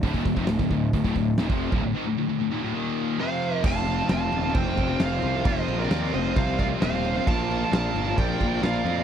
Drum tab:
CC |----------------|----------------|x-x-x-x-x-x-x-x-|x-x-x-x-x-x-x-x-|
HH |o---o---o---o---|----------------|----------------|----------------|
SD |----o-------o---|----------------|----o-------oo--|----o-------oo-o|
BD |oooo-oo-ooo--o-o|----------------|o-------o-o-----|o-------o-o-----|

CC |x-x-x-x-x-x-x-x-|
HH |----------------|
SD |----o-------oo--|
BD |o-------o-o-----|